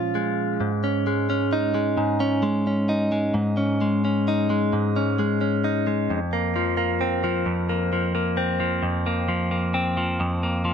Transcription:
Already playing: A#2 F3 G#3 C#4 F4
0.15 G#3
0.60 G#2
0.84 C#4
1.07 G#3
1.30 C#4
1.53 D#4
1.75 G#3
1.97 G#2
2.20 C#4
2.43 G#3
2.67 C#4
2.89 D#4
3.12 G#3
3.34 G#2
3.57 C#4
3.81 G#3
4.05 C#4
4.28 D#4
4.50 G#3
4.73 G#2
4.96 C#4
5.19 G#3
5.41 C#4
5.64 D#4
5.87 G#3
6.10 F2
6.33 A#3
6.56 F3
6.77 A#3
7.01 C4
7.24 F3
7.46 F2
7.69 A#3
7.93 F3
8.15 A#3
8.37 C4
8.60 F3
8.82 F2
9.06 A#3
9.28 F3
9.51 A#3
9.74 C4
9.97 F3
10.20 F2
10.43 A#3
10.65 F3

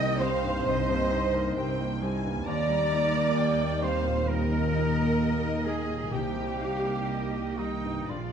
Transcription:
Already playing: C2 C3 G3 A#3 C4 D#4 G4 A#4 D#5 G5
0.00 A#3 C4
0.19 G3 C4 D#4 C5 F5
0.43 G2 A#3 C4
0.65 C2 C3 G3 C4 D#4 D#5
0.89 G2 A#3 C4
1.11 C4 D#4
1.34 A#3 C4 D#4 A#4
1.56 C2 C4 D#4 G4 A#4 G5
1.80 A#3 C4 D#4
2.02 G3 C4 D#4 G#5
2.25 G2 A#3 C4
2.46 D#2 D#3 A#3 D#4 D5 A#5
2.69 G3
2.91 D#4
3.14 A#4
3.37 G4 G5
3.60 D#4 D#5
3.82 G3 C4 A#4 C5 F5
4.05 A#2 D#4
4.28 D#3 G3 A#3 D#4 A#4 D#5
4.52 A#2
4.75 D#4
4.98 A#4
5.22 G4
5.43 D#4 D#5
5.64 G#3 A#3 G#4 A#4
5.89 A#2 D#4
6.11 C2 C3 G3 A#3 D#4 G4 G5
6.35 G3 C4
6.59 G3 D#4 F5
6.83 D#4 A#4
7.08 G4 A#4 D#5
7.33 D#4 G4
7.57 D#3 G3 D#4 G5
7.84 G2 G3
8.09 A#1 A#2 F3 G#3 D4 F4 D5

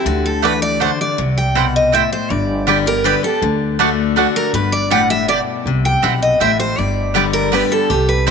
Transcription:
0.06 D2 D3 F#4
0.26 A4
0.42 E3 A3 F#4 B4 D5 F#5
0.62 D5
0.80 D3 A3 F#4 C5 D5 F#5
1.01 D5
1.18 C2 C3
1.38 G5
1.55 B2 C4 E4 C5 F#5 G5
1.76 D#5
1.92 A2 C4 E4 C5 E5 G5
2.12 C5
2.30 G1 G2 D5
2.67 D3 G3 B3 G4 D5 G5
2.86 B3 G4 A#4
3.04 D3 G3 B3 G4 B4 D5 G5
3.23 B3 G4 A4
3.42 D2 D3
3.79 D3 A3 D4 F#4 D5 F#5
4.16 D3 A3 D4 F#4 D5 F#5
4.36 A#4
4.53 G1 G2 B4
4.72 D5
4.90 A2 B3 G4 D5 F#5 G5
5.10 E5
5.28 B2 B3 G4 D5 G5
5.66 C2 C3
5.85 G5
6.02 B1 B2 C4 E4 C5 F#5 G5
6.22 D#5
6.40 A1 A2 C4 E4 C5 E5 G5
6.60 C5
6.78 G1 G2 D5
7.14 D3 G3 B3 G4 D5 G5
7.33 A#4
7.52 D3 G3 B3 G4 B4 D5 G5
7.72 A4
7.90 C2 C3 G4
8.09 B4
8.26 E3 G3 C4 E4 C5 G5

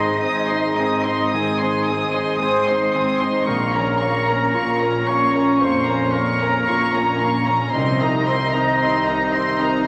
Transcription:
Already playing: G#2 D#3 C4 D#4 G#4 C5 D#5 C6
0.20 G#1 G#2 C4 G#4 G#5 D#6
0.48 D#4 C5 D#5 C6
0.75 C4 G#5 D#6
1.03 D#4 C5 D#5 C6
1.29 D#3 G#4 G#5 D#6
1.34 G#1 G#2 G#3 C4 G#5
1.58 D#4 C5 D#5 C6
1.84 G#4 G#5 D#6
1.89 C4
2.12 D#4 C5 D#5 C6
2.38 G#1 G#2 C4 G#4 C5 G#5 C6 D#6
2.43 C4
2.65 D#4 C5 D#5 C6
2.92 D#3 C4 G#5 D#6
3.19 C4 C5 C6
3.23 D#4 D#5
3.45 A#1 A#2 A#3 A#4 F5 A#5 C#6
3.49 A#3
3.73 F3 C#4 A#4 C#5 A#5
3.99 A#3 C#4 C#5 F5 C#6
4.26 C#4 F4 A#4 C#5 A#5
4.54 A#1 A#2 A#3 F4 A#4 F5 C#6
4.80 C#4 A#4 C#5 A#5
5.06 A#3 C#4 C#5 F5 C#6
5.33 C#4 A#4 C#5 A#5
5.58 A#1 F2 A#2 C5 F5 C6 C#6
5.63 A#3
5.85 C#4 A#4 C#5 A#5
6.12 A#3 A#4 C#5 F5 A#5 C#6
6.39 C#4 A#4 C#5 A#5
6.66 A#1 A#2 A#3 F4 A#4 F5 C#6
6.93 C#4 F4 A#4 C#5 A#5
7.19 A#3 C#4 F5 C#6
7.45 F3 C#4 A#4 C#5 A#5
7.72 C2 C3 D#3 C4 D#4 D#5 C6
7.98 G3 D#4 A#4 C5 A#5
8.25 C4 C5 D#5 C6
8.52 D#4 A#4 C5 A#5
8.79 C2 C3 C4 D#4 A#4 D#5 C6
9.06 D#4 A#4 C5 A#5
9.32 C4 D#5 C6
9.59 D#4 A#4 C5 A#5

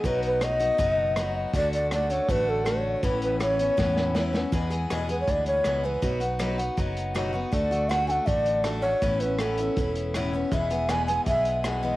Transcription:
0.04 B1 B2 F#3 B3 D#4 F#4 B4, kick, closed hi-hat
0.23 B4, closed hi-hat
0.41 F#3 B3 D#4 F#4 D#5, cross-stick, closed hi-hat
0.60 B3 D#4 F#4, closed hi-hat
0.78 F#1 B2 F#3 B3 D#4 F#4, kick, closed hi-hat
1.16 F#3 B3 D#4 F#4, cross-stick, closed hi-hat
1.53 D2 D3 A3 D4 F#4 D5, kick, closed hi-hat
1.73 D5, closed hi-hat
1.91 D3 A3 D4 F#4 D5, cross-stick, closed hi-hat
2.10 A3 D4 F#4 C#5, closed hi-hat
2.29 A1 D3 A3 D4 F#4 B4, kick, closed hi-hat
2.49 A4
2.65 D3 A3 D4 F#4 C#5, cross-stick, closed hi-hat
3.03 A1 A2 E3 B3 C#4 E4 B4, kick, closed hi-hat
3.22 B4, closed hi-hat
3.40 E3 B3 C#4 E4 C#5, cross-stick, closed hi-hat
3.59 B3 C#4 E4, closed hi-hat
3.77 E2 A2 E3 B3 C#4 E4, kick, snare
3.97 snare
4.15 E3 B3 C#4 E4, snare
4.33 B3 C#4 E4, snare
4.52 E2 B2 E3 G#3 B3 G#4, kick, closed hi-hat
4.70 E3 G#3 B3 G#4, closed hi-hat
4.90 E2 B2 E3 G#3 B3 G#4, cross-stick, closed hi-hat
5.09 E3 G#3 B3 G#4 B4, closed hi-hat
5.20 C#5
5.27 D2 E3 G#3 B3 G#4 D5, kick, closed hi-hat
5.46 C#5, closed hi-hat
5.64 C#2 E2 B2 E3 G#3 B3 G#4, cross-stick, closed hi-hat
5.83 E3 G#3 B3 G#4 B4
6.02 B1 B2 F#3 B3 D#4 F#4, kick, closed hi-hat
6.20 B3 D#4 F#4, closed hi-hat
6.39 B2 F#3 B3 D#4 F#4, cross-stick, closed hi-hat
6.58 B3 D#4 F#4, closed hi-hat
6.77 F#1 F#3 B3 D#4 F#4, kick, closed hi-hat
6.97 closed hi-hat
7.15 B2 F#3 B3 D#4 F#4, cross-stick, closed hi-hat
7.33 B3 D#4 F#4
7.51 D2 D3 A3 D4 F#4 D5, kick, closed hi-hat
7.71 A3 D4 F#4, closed hi-hat
7.89 D3 A3 D4 F#4 F#5, cross-stick, closed hi-hat
8.07 A3 D4 F#4 G#5, closed hi-hat
8.11 F#5
8.26 A1 D3 A3 D4 F#4 D5, kick, closed hi-hat
8.46 closed hi-hat
8.64 D3 A3 D4 F#4, cross-stick, closed hi-hat
8.82 A3 D4 F#4 C#5
9.02 A1 A2 E3 B3 C#4 E4, kick, closed hi-hat
9.20 B3 C#4 E4 B4, closed hi-hat
9.39 A2 E3 B3 C#4 E4 A4, cross-stick, closed hi-hat
9.58 B3 C#4 E4, closed hi-hat
9.77 E1 E3 B3 C#4 E4, kick, closed hi-hat
9.96 closed hi-hat
10.14 A2 E3 B3 C#4 E4, cross-stick, closed hi-hat
10.33 B3 C#4 E4
10.52 E1 E2 B2 E3 G#3 B3 G#4 E5, kick, closed hi-hat
10.70 E3 G#3 B3 G#4, closed hi-hat
10.89 E2 B2 E3 G#3 B3 G#4 G#5, cross-stick, closed hi-hat
11.07 E3 G#3 B3 G#4 G#5, closed hi-hat
11.26 B1 E3 G#3 B3 G#4 E5, kick, closed hi-hat
11.45 closed hi-hat
11.64 E2 B2 E3 G#3 B3 G#4, cross-stick, closed hi-hat
11.83 E3 G#3 B3 G#4 D#5

